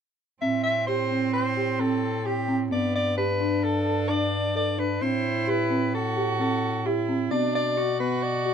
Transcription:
0.41 A2 C4 E5
0.63 E5
0.87 G4 C5
1.11 C4
1.33 C5
1.57 G4
1.79 C4 A4
2.25 G4
2.48 C4
2.71 G2 B3 D5
2.95 D5
3.17 D4 G4 B4
3.41 D4
3.64 A4
3.87 A4
4.09 D4 D5
4.55 A4 D5
4.78 D4 B4
5.01 A2 C4 E4 C5
5.47 G4 B4
5.70 C4
5.93 F#4 A4
6.16 G4
6.39 C4 A4
6.86 E4 G4
7.08 C4
7.31 B2 B3 D4 D5
7.55 D5
7.77 F#4
8.00 B3 B4
8.23 D5
8.46 F#4

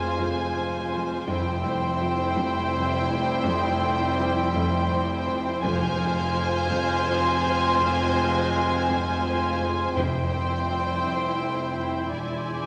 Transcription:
Already playing: F1 F2 F3 G#3 C4 F4 C5 F5 G#5
0.21 F2
0.57 F2
0.93 F2 C6
1.28 F1 F2 C3 G3 C4 E4 C5 G5 C6 E6
1.66 F2
2.02 F3 G5
2.37 F2
2.74 F2
3.10 F2
3.46 F2 G#4
3.83 F2
4.19 F3
4.55 F2
4.91 F2 C6
5.27 F2
5.62 F1 F2 C3 G#3 C4 F4 C5 G#5 F6 G6
5.99 F2
6.35 F3
6.71 F2
7.08 F2 G#6
7.44 F2
7.79 F2
8.16 F2
8.52 F3
8.89 F2
9.25 F2
9.61 F2
9.96 F1 F2 C3 G3 C4 E4 C5 G5 C6 E6
10.33 F2
10.69 F3
11.05 F2
11.41 F2 E6 G6
11.77 F2
12.11 E1 E2 B2 G#3 D4 D5 G#5
12.49 E2

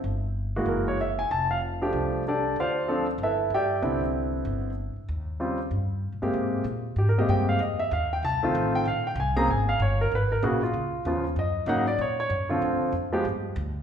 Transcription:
0.04 G1
0.56 E3 G#3 A#3 F#4
0.66 F#1 A#4
0.88 C#5
1.01 E5
1.19 G#5
1.31 F1 A5
1.51 F5
1.82 F3 A3 D4 G4
1.93 C2
2.28 D4 G4 A4 D5
2.56 D2 F4 D5
2.60 C5 F5
2.88 F3 C4 D4 A4
3.18 G1
3.23 E4 A4 B4 E5
3.50 G2
3.54 G4 D5 E5 G5
3.82 C2 D3 B3 C4 E4
4.45 G1
4.96 muted upright bass stroke
5.08 D#2
5.40 C#3 G3 C4 F4
5.71 G2
6.12 A#2
6.22 G2 C3 G#3 A#3 G4
6.64 A#2
6.96 G#2 G4
7.09 A#4
7.18 C3 G#3 A#3 G4 D#5
7.29 G2 G5
7.49 F5
7.59 F2 D#5
7.79 E5
7.91 D#2 F5
8.13 G5
8.23 C2 A5
8.43 D#3 A3 C4 F4
8.55 A1
8.75 G5
8.85 A#1 F5
9.07 G5
9.15 C2
9.20 G#5
9.37 C#3 A#3 C4 G#4 A#5
9.48 G#1 G#5
9.69 F5
9.80 G1 C#5
10.01 A#4
10.12 G#1 B4
10.32 A#4
10.42 A#1 C#3 A#3 B3 F#4 G#4
10.63 F4
10.73 C#2
11.05 D#2 C#3 F3 B3 F4
11.36 F#2 D#5
11.66 G#2 C#3 F#3 A#3 D#4 F#5
11.87 D5
11.98 A#2 C#5
12.20 C#5
12.30 F#2
12.49 D3 F3 C4 F4
12.62 D2
12.82 muted upright bass stroke
12.92 F2
13.13 F3 G#3 B3 G4
13.25 G2
13.56 D2

